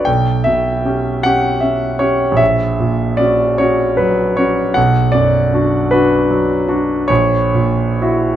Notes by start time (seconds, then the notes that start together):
Already playing: F#4 B4
0.05 B1 G5
0.44 B2 E5
0.85 C#4 G4
1.23 C#4 G4 F#5
1.60 C#4 E5
1.99 C#4 G4 C#5
2.31 A#1
2.37 E5
2.80 A#2
3.17 C#4 F#4 D5
3.58 C#4 F#4 C#5
3.97 F#3 B4
4.37 C#4 F#4 C#5
4.74 B1 F#5
5.12 F#2 D5
5.54 D4 F#4
5.91 D4 F#4 B4
6.31 F#3
6.68 D4 F#4
7.08 A#1 C#5
7.54 A#2
8.02 E4 F#4